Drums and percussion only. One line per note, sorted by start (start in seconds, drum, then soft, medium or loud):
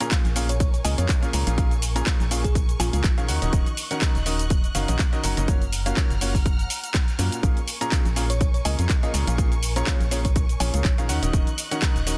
0.01 closed hi-hat medium
0.01 shaker soft
0.11 kick loud
0.11 clap loud
0.11 closed hi-hat medium
0.11 shaker soft
0.25 closed hi-hat soft
0.25 shaker soft
0.36 open hi-hat loud
0.36 shaker medium
0.49 closed hi-hat medium
0.49 shaker soft
0.60 kick loud
0.60 closed hi-hat medium
0.60 shaker soft
0.74 closed hi-hat soft
0.74 shaker soft
0.85 open hi-hat loud
0.85 shaker medium
0.98 closed hi-hat medium
0.98 shaker soft
1.09 kick loud
1.09 clap loud
1.09 closed hi-hat medium
1.09 shaker soft
1.23 closed hi-hat soft
1.23 shaker soft
1.33 open hi-hat loud
1.33 shaker medium
1.47 closed hi-hat medium
1.47 shaker soft
1.58 kick loud
1.58 closed hi-hat medium
1.58 shaker soft
1.71 closed hi-hat soft
1.71 shaker soft
1.82 open hi-hat loud
1.82 shaker medium
1.96 closed hi-hat medium
1.96 shaker soft
2.06 kick loud
2.06 clap loud
2.06 closed hi-hat medium
2.06 shaker soft
2.20 closed hi-hat soft
2.20 shaker soft
2.31 open hi-hat loud
2.31 shaker medium
2.44 kick medium
2.44 closed hi-hat medium
2.44 shaker soft
2.55 kick loud
2.55 closed hi-hat medium
2.55 shaker soft
2.69 closed hi-hat soft
2.69 shaker soft
2.80 open hi-hat loud
2.80 shaker medium
2.93 closed hi-hat medium
2.93 shaker soft
3.04 kick loud
3.04 clap loud
3.04 closed hi-hat medium
3.04 shaker soft
3.18 closed hi-hat soft
3.18 shaker soft
3.29 open hi-hat loud
3.29 shaker medium
3.42 closed hi-hat medium
3.42 shaker soft
3.53 kick loud
3.53 closed hi-hat soft
3.53 shaker soft
3.66 closed hi-hat soft
3.66 shaker soft
3.77 open hi-hat loud
3.77 shaker medium
3.91 closed hi-hat medium
3.91 shaker soft
4.01 kick loud
4.01 clap loud
4.01 closed hi-hat medium
4.01 shaker soft
4.15 closed hi-hat soft
4.15 shaker soft
4.26 open hi-hat loud
4.26 shaker medium
4.39 closed hi-hat medium
4.39 shaker soft
4.50 kick loud
4.50 closed hi-hat medium
4.50 shaker soft
4.64 closed hi-hat soft
4.64 shaker soft
4.75 open hi-hat loud
4.75 shaker medium
4.88 closed hi-hat medium
4.88 shaker soft
4.99 kick loud
4.99 clap loud
4.99 closed hi-hat medium
4.99 shaker soft
5.13 closed hi-hat soft
5.13 shaker soft
5.24 open hi-hat loud
5.24 shaker medium
5.37 closed hi-hat medium
5.37 shaker soft
5.48 kick loud
5.48 closed hi-hat soft
5.48 shaker soft
5.62 closed hi-hat soft
5.62 shaker soft
5.73 open hi-hat loud
5.73 shaker medium
5.86 closed hi-hat medium
5.86 shaker soft
5.97 kick loud
5.97 clap loud
5.97 closed hi-hat soft
5.97 shaker soft
6.10 closed hi-hat soft
6.10 shaker soft
6.21 open hi-hat loud
6.21 shaker medium
6.35 kick medium
6.35 open hi-hat medium
6.35 shaker soft
6.46 kick loud
6.46 closed hi-hat medium
6.46 shaker soft
6.59 closed hi-hat soft
6.59 shaker soft
6.70 open hi-hat loud
6.70 shaker medium
6.84 closed hi-hat soft
6.84 shaker soft
6.94 kick loud
6.94 clap loud
6.94 closed hi-hat soft
6.94 shaker soft
7.08 closed hi-hat soft
7.08 shaker soft
7.19 open hi-hat loud
7.19 shaker medium
7.32 closed hi-hat medium
7.32 shaker soft
7.43 kick loud
7.43 closed hi-hat soft
7.43 shaker soft
7.57 closed hi-hat soft
7.57 shaker soft
7.68 open hi-hat loud
7.68 shaker medium
7.81 closed hi-hat soft
7.81 shaker soft
7.92 kick loud
7.92 clap loud
7.92 closed hi-hat medium
7.92 shaker soft
8.05 closed hi-hat soft
8.05 shaker soft
8.16 open hi-hat loud
8.16 shaker medium
8.30 closed hi-hat medium
8.30 shaker soft
8.41 kick loud
8.41 closed hi-hat medium
8.41 shaker soft
8.54 closed hi-hat soft
8.54 shaker soft
8.65 open hi-hat loud
8.65 shaker medium
8.79 closed hi-hat medium
8.79 shaker soft
8.89 kick loud
8.89 clap loud
8.89 closed hi-hat medium
8.89 shaker soft
9.03 closed hi-hat soft
9.03 shaker soft
9.14 open hi-hat loud
9.14 shaker medium
9.27 closed hi-hat medium
9.27 shaker soft
9.38 kick loud
9.38 closed hi-hat soft
9.38 shaker soft
9.52 closed hi-hat soft
9.52 shaker soft
9.63 open hi-hat loud
9.63 shaker medium
9.76 closed hi-hat medium
9.76 shaker soft
9.87 kick loud
9.87 clap loud
9.87 closed hi-hat medium
9.87 shaker soft
10.01 closed hi-hat soft
10.01 shaker soft
10.11 open hi-hat loud
10.11 shaker medium
10.25 kick medium
10.25 closed hi-hat medium
10.25 shaker soft
10.36 kick loud
10.36 closed hi-hat medium
10.36 shaker soft
10.49 closed hi-hat soft
10.49 shaker soft
10.60 open hi-hat loud
10.60 shaker medium
10.74 closed hi-hat medium
10.74 shaker soft
10.84 kick loud
10.84 clap loud
10.84 closed hi-hat medium
10.84 shaker soft
10.98 closed hi-hat soft
10.98 shaker soft
11.09 open hi-hat loud
11.09 shaker medium
11.23 closed hi-hat medium
11.23 shaker soft
11.33 kick loud
11.33 closed hi-hat medium
11.33 shaker soft
11.47 closed hi-hat soft
11.47 shaker soft
11.58 open hi-hat loud
11.58 shaker medium
11.71 closed hi-hat medium
11.71 shaker soft
11.82 kick loud
11.82 clap loud
11.82 closed hi-hat medium
11.82 shaker soft
11.96 closed hi-hat soft
11.96 shaker soft
12.07 open hi-hat loud
12.07 shaker medium